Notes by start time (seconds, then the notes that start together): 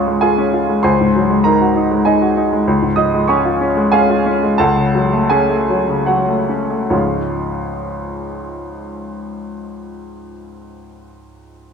Already playing: C#2 G#2 C#3 G#3 C#4 F4 C#5 D#5 G#5 C#6 D#6
0.07 G#3
0.21 F4 G#4 F5 G#5
0.38 C#4
0.54 F4
0.69 G#3
0.83 C#2 C5 G#5 C6
1.01 G#2
1.16 F#3
1.30 G#3
1.44 D#4 A#4 A#5
1.61 F#4
1.76 D#4
1.91 G#3
2.05 D#4 G#4 D#5 G#5
2.21 F#4
2.37 D#4
2.53 G#3
2.68 C#2
2.82 G#2
2.96 F3 D#5 D#6
3.14 G#3
3.28 C#4 C#5 G#5 C#6
3.45 F4
3.61 C#4
3.77 G#3
3.92 C#4 G#4 F5 G#5
4.10 F4
4.26 C#4
4.43 G#3
4.58 C#2 A4 F#5 A5
4.77 C#3
4.95 F#3
5.13 A3
5.30 C#4 G#4 G#5
5.50 A3
5.69 F#3
5.88 C#3
6.06 F#3 F#4 C#5 F#5
6.28 A3
6.49 C#4
6.70 A3
6.90 C#2 G#2 F3 G#3 C#4 F4 C#5